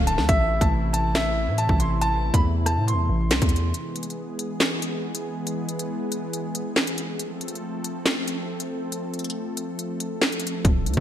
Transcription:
Already playing: D1 D3 F3 A3 F4
0.07 A5, closed hi-hat
0.18 D2, snare
0.29 A1 C3 E3 E4 E5, kick, closed hi-hat
0.61 A1 A5, kick, closed hi-hat
0.93 A5, closed hi-hat
1.15 E5, snare, clap, closed hi-hat
1.47 A2
1.58 A5, closed hi-hat
1.69 A1, kick
1.80 C6, closed hi-hat
2.01 A5, closed hi-hat
2.34 E2 B5, kick, closed hi-hat
2.66 A5, cross-stick, closed hi-hat
2.77 A2
2.88 C6, closed hi-hat
2.93 E2
3.09 A1
3.31 C2, snare, clap, closed hi-hat
3.42 E2, kick, closed hi-hat
3.49 closed hi-hat
3.56 closed hi-hat
3.74 E3 G#3 B3 G#4, closed hi-hat
3.96 closed hi-hat
4.03 closed hi-hat
4.10 closed hi-hat
4.39 closed hi-hat
4.60 snare, clap, closed hi-hat
4.82 closed hi-hat
5.15 closed hi-hat
5.47 closed hi-hat
5.69 closed hi-hat
5.79 closed hi-hat
6.12 closed hi-hat
6.33 closed hi-hat
6.55 closed hi-hat
6.76 snare, clap
6.87 closed hi-hat
6.98 closed hi-hat
7.19 F3 A3 C4 A4, closed hi-hat
7.41 closed hi-hat
7.48 closed hi-hat
7.55 closed hi-hat
7.84 closed hi-hat
8.06 snare, clap, closed hi-hat
8.28 closed hi-hat
8.60 closed hi-hat
8.92 closed hi-hat
9.14 closed hi-hat
9.19 closed hi-hat
9.24 closed hi-hat
9.30 closed hi-hat
9.57 closed hi-hat
9.79 closed hi-hat
10.00 closed hi-hat
10.22 snare, clap
10.32 closed hi-hat
10.40 closed hi-hat
10.47 closed hi-hat
10.65 D1 D4, kick, closed hi-hat
10.86 D2, closed hi-hat
10.94 D2, kick, closed hi-hat

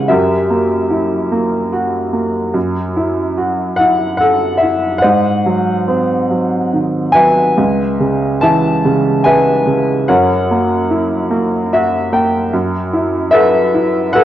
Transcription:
Already playing: C#3 E3 G#3 G#4 B4 E5 F#5 G#5
0.08 F#2 G4 A#4 E5
0.50 A#3
0.90 E4
1.32 A#3
1.73 F#4
2.13 A#3
2.54 F#2
2.96 E4
3.38 F#4
3.76 E4 F#5
4.17 A4 F#5
4.58 E5
4.63 E4
4.98 C5 D#5 F#5
5.04 G#2
5.46 F#3
5.88 C4
6.31 F#3
6.73 D#3
7.12 F#3 B4 E5 G#5
7.57 C#2
8.00 C#3
8.41 E3 E5 A5
8.85 C#3
9.24 G#3 B4 E5 G#5
9.67 C#3
10.08 F#2 A#4 C#5 F#5
10.51 A#3
10.91 E4
11.31 A#3
11.73 F#4 E5
12.12 A#3 G5
12.53 F#2
12.93 E4
13.31 F#4 A4 B4 E5
13.74 E4
14.13 F#4 A4 B4 F#5

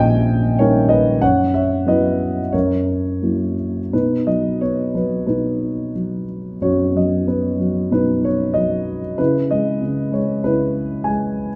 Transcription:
Already playing: A#1 D#2 G3 C#4 D#4 A#4 D#5 E5 G5 G#5
0.59 G3 C#4 D#4 A#4 C#5
0.89 B4 D#5
1.22 F#2 C#5 F#5
1.54 C#5 E5
1.86 F#3 B3 E4 B4 D#5
2.52 F#2 A#4 C#5
3.22 F#3 A#3 E4
3.93 B2 D#4 B4
4.27 F#3 D#5
4.61 B3 C#5
4.94 F#3 B4
5.27 B2 D#4 B4
5.95 F#3
6.61 F#2 F#4 C#5
6.95 F#3 D#5
7.26 B3 B4
7.59 F#3
7.91 B2 D#4 B4
8.25 C#5
8.54 F#3 D#5
9.18 C#3 E4 B4
9.51 G#3 D#5
9.82 C#3
10.12 G#3 C#5
10.44 C#3 E4 B4
11.04 G#3 G#5

